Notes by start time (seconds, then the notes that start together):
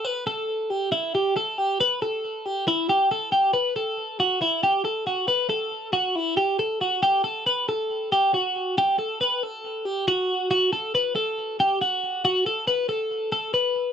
0.05 B4
0.27 A4
0.70 G4
0.92 E4
1.15 G4
1.37 A4
1.58 G4
1.81 B4
2.02 A4
2.46 G4
2.68 E4
2.89 G4
3.11 A4
3.32 G4
3.53 B4
3.76 A4
4.20 F#4
4.42 E4
4.63 G4
4.85 A4
5.07 F#4
5.28 B4
5.50 A4
5.93 F#4
6.16 E4
6.37 G4
6.59 A4
6.81 F#4
7.03 G4
7.24 A4
7.46 B4
7.69 A4
8.12 G4
8.34 F#4
8.78 G4
8.99 A4
9.21 B4
9.43 A4
9.85 G4
10.08 F#4
10.51 F#4
10.73 A4
10.95 B4
11.16 A4
11.60 G4
11.81 F#4
12.25 F#4
12.46 A4
12.68 B4
12.89 A4
13.32 A4
13.54 B4